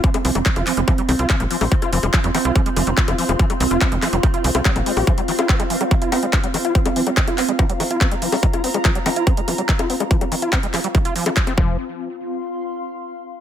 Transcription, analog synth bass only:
X:1
M:4/4
L:1/16
Q:1/4=143
K:Cphr
V:1 name="Analog synth bass" clef=bass
z2 C,, F,,, z F,,, z F,,, z2 C,, C,, z B,,, z B,,, | z2 F,,, F,,, z F,, z C,, z2 F,,, F,,, z F,,, z F,,, | z2 C,, F,,, z F,,, z F,,, z2 C,, C,, z B,,, z B,,, | z16 |
z16 | z16 | z12 z2 F,,,2 | z16 |]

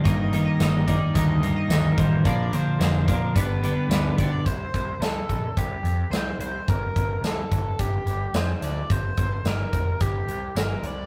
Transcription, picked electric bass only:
X:1
M:4/4
L:1/8
Q:1/4=108
K:Cdor
V:1 name="Picked electric bass" clef=bass
G,,,2 G,,,2 D,,2 D,, A,,, | B,,,2 F,,,2 G,,,2 D,, =B,,, | C,, C,, C,, B,,, C,, F,, C,, C,, | G,,, G,,, C,, G,,, G,,, G,,, F,, D,, |
G,,, G,,, G,,, F,,, G,,, C,, G,,, C,, |]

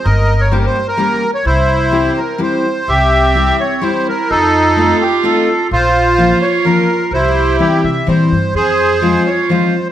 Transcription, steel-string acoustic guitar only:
X:1
M:3/4
L:1/8
Q:1/4=127
K:Cphr
V:1 name="Steel-string acoustic guitar"
z2 [G,B,DG] z [G,B,DG] z | z2 [G,C=EG] z [G,CEG] z | z2 [G,C=EG] z [G,CEG] z | z2 [=A,CEF] z [A,CEF] z |
z2 [F,B,DF] z [F,B,DF] z | z2 [=E,G,C=E] z [E,G,CE] z | z2 [F,A,CF] z [F,A,CF] z |]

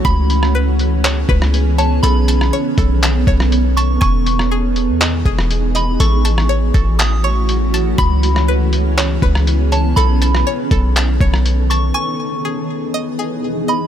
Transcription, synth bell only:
X:1
M:4/4
L:1/8
Q:1/4=121
K:E
V:1 name="Synth bell"
b2 z4 z a | b6- b c' | c'2 z4 z b | c'4 d' c' z2 |
b2 z4 z a | b6- b c' | c'2 z4 z b |]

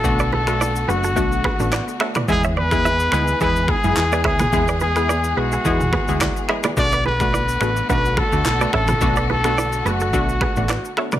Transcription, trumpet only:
X:1
M:4/4
L:1/8
Q:"Swing 16ths" 1/4=107
K:Bdor
V:1 name="Trumpet"
A A2 F4 z | G B3 B G2 G- | G G2 F4 z | d B3 B A2 A- |
A A2 F4 z |]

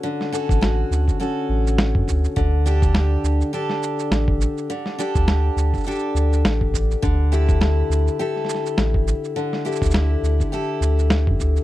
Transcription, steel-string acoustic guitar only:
X:1
M:4/4
L:1/8
Q:"Swing 16ths" 1/4=103
K:Glyd
V:1 name="Steel-string acoustic guitar"
[D,CFA] [CFA] F2 [CFA]4 | D, [DGA] G2 [DGA]4 | D, [DGA] G2 [DGA]4 | D, [EGA] E2 [EGA]4 |
D, [EGA] E2 [EGA]4 |]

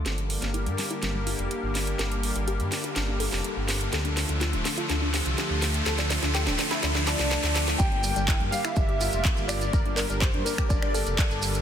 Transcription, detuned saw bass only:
X:1
M:4/4
L:1/16
Q:1/4=124
K:Gdor
V:1 name="Detuned saw bass" clef=bass
G,,,3 G,,,2 G,, z2 G,,,3 F,,, z G,,,3 | G,,,3 G,,,2 G,, z2 G,,,3 F,,, z G,,,3 | D,,3 D,,2 D,,, z2 D,,3 C,, z D,,3 | D,,3 D,,2 D,,, z2 D,,3 C,,2 D,,3 |
G,,,3 G,,,2 G,, z2 G,,,3 F,,, z G,,,3 | G,,,3 G,,,2 G,, z2 G,,,3 F,,, z G,,,3 |]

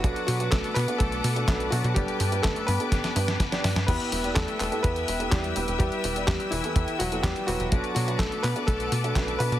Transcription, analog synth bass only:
X:1
M:4/4
L:1/16
Q:1/4=125
K:Em
V:1 name="Analog synth bass" clef=bass
B,,, z B,,2 B,,, z B,, z B,,,2 B,,2 B,,,2 B,, B,, | G,,, z G,,2 G,,, z G,, z G,,, z G,,2 G,,, z G,, G,, | E,, z E,,,2 E,, z E,,, z E,,2 E,,,2 E,,2 E,,, E,,, | E,, z E,,,2 E,, z E,,, z E,, z E,,,2 E,, z E,,, E,,, |
B,,, z B,,2 B,,, z B,, z B,,,2 B,,2 B,,,2 B,, B,, |]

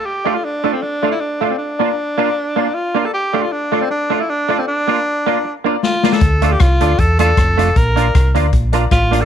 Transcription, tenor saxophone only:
X:1
M:4/4
L:1/16
Q:"Swing" 1/4=156
K:Dm
V:1 name="Tenor saxophone"
G3 F D3 C D3 E D3 C | D12 F3 A | G3 F D3 C D3 E D3 C | D8- D z3 F3 A- |
A3 G F4 A2 A6 | B6 z6 F3 A |]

